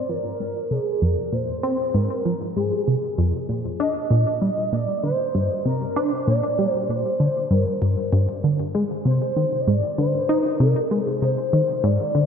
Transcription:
0.00 0.11 C5 loud
0.09 0.18 F3 medium
0.09 0.73 A#4 loud
0.40 0.54 G#2 medium
0.71 0.79 C3 medium
0.71 1.03 G#4 medium
1.02 1.16 F2 medium
1.02 1.34 A#4 medium
1.32 1.54 A#2 medium
1.32 1.96 C5 loud
1.63 1.78 C4 loud
1.94 2.09 G#2 medium
1.94 2.55 A#4 medium
2.25 2.34 F3 medium
2.56 2.71 G#2 medium
2.56 3.45 G#4 medium
2.88 2.96 C3 medium
3.18 3.32 F2 loud
3.49 3.70 A#2 medium
3.80 3.94 D4 medium
3.80 4.74 D#5 loud
4.11 4.25 A#2 loud
4.42 4.50 G3 medium
4.72 4.87 A#2 medium
4.72 5.03 D5 loud
5.03 5.12 D3 medium
5.03 5.62 C5 loud
5.35 5.49 G2 loud
5.65 5.87 C3 medium
5.65 5.98 A#4 medium
5.96 6.11 D4 medium
5.96 6.27 C5 medium
6.27 6.42 A#2 loud
6.27 6.71 D5 loud
6.59 6.67 G3 medium
6.71 6.90 C5 loud
6.89 7.03 A#2 medium
6.89 7.53 C5 medium
7.20 7.29 D3 medium
7.51 7.65 G2 medium
7.51 8.44 A#4 medium
7.82 7.96 G2 medium
8.13 8.27 G2 loud
8.44 8.65 D3 medium
8.75 8.83 G#3 medium
9.05 9.20 C3 medium
9.05 9.62 C5 medium
9.36 9.45 D#3 medium
9.61 9.69 D#5 medium
9.68 9.82 G#2 loud
9.68 9.98 D5 medium
9.98 10.20 D3 medium
9.98 10.43 C5 medium
10.29 10.44 D#4 loud
10.43 10.57 A#4 medium
10.60 10.74 C3 loud
10.60 11.05 A#4 medium
10.91 11.00 G#3 medium
11.05 11.18 G#4 medium
11.22 11.36 C3 medium
11.22 11.86 C5 loud
11.53 11.62 D#3 medium
11.84 11.98 G#2 medium
11.84 12.26 D5 loud
12.15 12.26 D3 medium

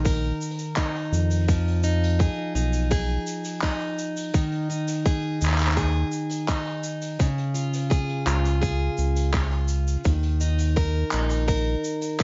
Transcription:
0.00 0.32 A#1 medium
0.00 1.48 D#3 medium
0.00 0.76 D#4 medium
0.05 1.55 A#4 medium
0.05 kick medium
0.05 open hi-hat medium
0.05 shaker medium
0.41 shaker medium
0.50 open hi-hat medium
0.59 shaker medium
0.76 1.83 D#4 medium
0.76 kick loud
0.76 clap medium
0.76 open hi-hat medium
0.76 shaker soft
0.95 open hi-hat soft
1.12 2.29 F2 loud
1.12 shaker medium
1.30 open hi-hat medium
1.30 shaker medium
1.48 4.33 F3 medium
1.48 kick medium
1.48 open hi-hat medium
1.48 shaker soft
1.67 open hi-hat soft
1.84 2.55 D#4 medium
1.84 shaker medium
2.03 open hi-hat medium
2.19 2.90 G#4 medium
2.19 kick loud
2.19 open hi-hat medium
2.19 shaker soft
2.55 3.18 B1 medium
2.55 3.62 D#4 medium
2.55 shaker medium
2.73 open hi-hat medium
2.73 shaker medium
2.90 5.05 G#4 medium
2.90 kick medium
2.90 open hi-hat medium
2.90 shaker medium
3.27 shaker medium
3.44 open hi-hat medium
3.44 shaker medium
3.61 4.69 D#4 medium
3.61 kick medium
3.61 clap medium
3.61 open hi-hat medium
3.61 shaker soft
3.80 open hi-hat soft
3.99 shaker medium
4.17 open hi-hat medium
4.17 shaker medium
4.34 7.19 D#3 medium
4.34 kick loud
4.34 open hi-hat medium
4.34 shaker soft
4.52 open hi-hat soft
4.70 5.40 D#4 medium
4.70 shaker medium
4.88 open hi-hat medium
4.88 shaker medium
5.05 5.76 G#4 medium
5.05 kick loud
5.05 open hi-hat medium
5.05 shaker soft
5.41 6.04 D#2 medium
5.41 6.47 D#4 medium
5.41 shaker medium
5.45 clap soft
5.50 clap soft
5.54 clap soft
5.58 clap medium
5.58 open hi-hat medium
5.58 shaker medium
5.63 clap medium
5.67 clap medium
5.71 clap medium
5.77 7.90 G#4 medium
5.77 kick medium
5.77 open hi-hat medium
5.77 shaker soft
6.12 shaker medium
6.29 open hi-hat soft
6.29 shaker medium
6.48 7.27 D#4 medium
6.48 kick medium
6.48 clap medium
6.48 open hi-hat medium
6.48 shaker soft
6.66 open hi-hat soft
6.83 shaker medium
7.01 open hi-hat medium
7.01 shaker medium
7.19 10.04 C#3 medium
7.19 kick loud
7.19 open hi-hat medium
7.19 shaker soft
7.38 open hi-hat soft
7.54 8.25 F4 medium
7.54 shaker medium
7.74 open hi-hat soft
7.74 shaker medium
7.90 8.60 G#4 medium
7.90 kick loud
7.90 open hi-hat medium
7.90 shaker soft
8.09 open hi-hat soft
8.26 8.89 C#2 medium
8.26 9.32 F4 medium
8.26 clap medium
8.26 shaker medium
8.45 open hi-hat medium
8.45 shaker medium
8.61 10.12 G#4 medium
8.61 kick loud
8.61 open hi-hat medium
8.61 shaker soft
8.98 9.97 C#2 medium
8.98 shaker medium
9.16 open hi-hat medium
9.16 shaker medium
9.33 10.12 F4 medium
9.33 kick loud
9.33 clap medium
9.33 open hi-hat medium
9.33 shaker soft
9.51 open hi-hat soft
9.68 shaker medium
9.88 shaker medium
10.04 11.04 D#2 medium
10.04 12.23 D#3 medium
10.04 kick loud
10.04 open hi-hat medium
10.04 shaker soft
10.23 open hi-hat soft
10.41 11.12 D#4 medium
10.41 shaker medium
10.58 open hi-hat medium
10.58 shaker medium
10.76 11.46 A#4 medium
10.76 kick loud
10.76 open hi-hat medium
10.76 shaker soft
11.11 11.76 A#1 medium
11.11 12.19 D#4 medium
11.11 clap medium
11.11 shaker medium
11.29 open hi-hat medium
11.29 shaker medium
11.48 12.23 A#4 medium
11.48 kick loud
11.48 open hi-hat medium
11.48 shaker soft
11.84 shaker medium
12.01 open hi-hat medium
12.01 shaker medium
12.19 12.23 D#4 medium
12.19 kick loud
12.19 clap medium
12.19 open hi-hat medium
12.19 shaker soft

